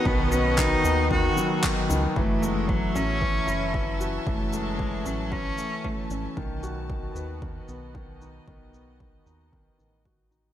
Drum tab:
SH |-x-x-x-x|-x-x-x-x|-x-x-x-x|-x-x-x-x|
CP |--x---x-|--------|--------|--------|
BD |o-o-o-o-|o-o-o-o-|o-o-o-o-|o-o-o-o-|

SH |-x-x-x-x|
CP |--------|
BD |o-o-o-o-|